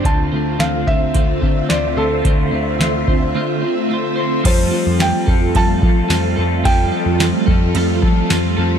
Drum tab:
CC |--------|--------|x-------|--------|
RD |--------|--------|x-x-x-x-|x-x-x-x-|
HH |x-x-x-x-|x-x-----|--------|--------|
TB |--------|--------|--x---x-|--x---x-|
SD |--o---o-|--o-----|--o---o-|--o---o-|
BD |o--ooo--|o--o----|o--ooo--|o--o-o--|